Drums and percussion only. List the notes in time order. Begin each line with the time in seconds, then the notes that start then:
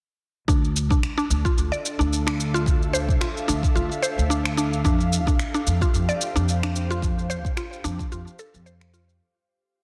0.48 kick, shaker
0.65 shaker
0.76 shaker
0.91 kick, shaker
1.03 finger snap, shaker
1.19 shaker
1.31 shaker
1.45 kick, shaker
1.58 shaker
1.73 shaker
1.86 shaker
2.01 shaker
2.13 shaker
2.28 finger snap
2.40 shaker
2.55 shaker
2.66 kick, shaker
2.82 shaker
2.95 shaker
3.09 kick, shaker
3.21 finger snap, shaker
3.37 shaker
3.49 shaker
3.63 kick, shaker
3.77 shaker
3.92 shaker
4.04 shaker
4.19 shaker
4.31 shaker
4.45 finger snap, shaker
4.58 shaker
4.73 shaker
4.84 kick, shaker
5.00 shaker
5.13 shaker
5.27 kick, shaker
5.39 finger snap, shaker
5.55 shaker
5.67 shaker
5.81 kick, shaker
5.94 shaker
6.09 shaker
6.21 shaker
6.36 shaker
6.49 shaker
6.63 finger snap, shaker
6.76 shaker
6.91 shaker
7.02 kick, shaker
7.19 shaker
7.31 shaker
7.45 kick, shaker
7.57 finger snap, shaker
7.73 shaker
7.85 shaker
7.99 kick, shaker
8.12 shaker
8.27 shaker
8.39 shaker
8.54 shaker
8.67 shaker
8.81 finger snap, shaker
8.94 shaker
9.09 shaker